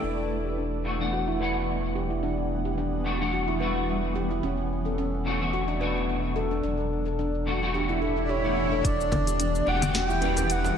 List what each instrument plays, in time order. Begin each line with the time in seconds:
Already playing: ambient pad E4 B4 D5
0.03 sub bass E1, ambient pad E3, handpan D4, cabasa
0.19 cabasa
0.36 ambient pad B3
0.45 handpan G4, cabasa
0.58 handpan D4, cabasa
0.66 ambient pad G3
0.74 cabasa
0.78 ambient pad F#5
0.84 clean electric guitar B2 E3 A3 D4 F#4
0.99 clean electric guitar B2 E3 A3 D4 F#5, cabasa
1.13 handpan F#4, cabasa
1.28 handpan E4, cabasa
1.38 clean electric guitar B2 E3 A3 D4, handpan B4
1.43 clean electric guitar F#5
1.56 cabasa
1.69 cabasa
1.83 cabasa
1.95 handpan G4
2.10 handpan E4, cabasa
2.23 handpan D4, cabasa
2.39 cabasa
2.65 handpan G4, cabasa
2.78 handpan D4, cabasa
2.94 cabasa
3.04 clean electric guitar B2 E3 A3 D4 F#4
3.19 clean electric guitar B2 E3 A3 D4 F#5, cabasa
3.33 handpan F#4, cabasa
3.48 handpan E4, cabasa
3.58 clean electric guitar B2 E3 A3 D4 F#4, handpan B4
3.76 cabasa
3.89 cabasa
4.04 cabasa
4.15 handpan G4
4.31 handpan E4, cabasa
4.43 sub bass E1, ambient pad B2, handpan C#4, cabasa
4.59 cabasa
4.86 handpan A4, cabasa
4.98 handpan C#4, cabasa
5.14 cabasa
5.25 clean electric guitar B2 E3 A3 D4 F#4
5.39 clean electric guitar B2 D3 E3 A3 F#4, ambient pad F#3 D4, cabasa
5.53 handpan F#4, cabasa
5.68 handpan D4, cabasa
5.79 clean electric guitar B2 E3 A3 D4, handpan B4
5.83 clean electric guitar F#4
5.97 cabasa
6.09 cabasa
6.25 cabasa
6.36 handpan A4
6.51 handpan D4, cabasa
6.63 sub bass E1, ambient pad A2, handpan D4, cabasa
6.80 cabasa
7.06 handpan A4, cabasa
7.19 ambient pad E3, handpan D4, cabasa
7.35 cabasa
7.46 clean electric guitar B2 E3 A3 D4 F#4
7.61 clean electric guitar B2 E3 A3 D4 F#4, ambient pad B3, cabasa
7.74 handpan G4, swell, cabasa
7.89 handpan E4, cabasa
8.02 handpan A4
8.16 handpan D4, cabasa
8.24 soft synth lead D5
8.29 handpan G4, soft synth lead C#5, cabasa
8.43 clean electric guitar B2 E3 A3 D4 F#5, handpan E4, cabasa
8.57 handpan D4
8.72 handpan A4, cabasa
8.84 sub bass E1, handpan D4, soft synth lead D5, kick, closed hi-hat, cabasa
9.01 cabasa
9.12 ambient pad G3, kick, closed hi-hat, djembe slap, djembe tone, low conga
9.27 handpan G4, closed hi-hat, cabasa
9.40 handpan D4, closed hi-hat, cabasa
9.44 ambient pad E5
9.55 cabasa
9.66 sub bass E1, clean electric guitar B2 E3 A3 D4 G4, soft synth lead F#5, djembe slap
9.80 clean electric guitar B2 E3 A3 D4 G4, closed hi-hat, low conga, cabasa
9.94 handpan F#4, soft synth lead G5, snare, closed hi-hat, djembe tone, cabasa
10.09 handpan E4, cabasa
10.20 clean electric guitar B2 E3 G3 A3 D4, handpan B4, closed hi-hat, djembe tone
10.36 closed hi-hat, djembe slap, djembe tone, cabasa
10.50 soft synth lead F#5, closed hi-hat, cabasa
10.65 djembe slap, cabasa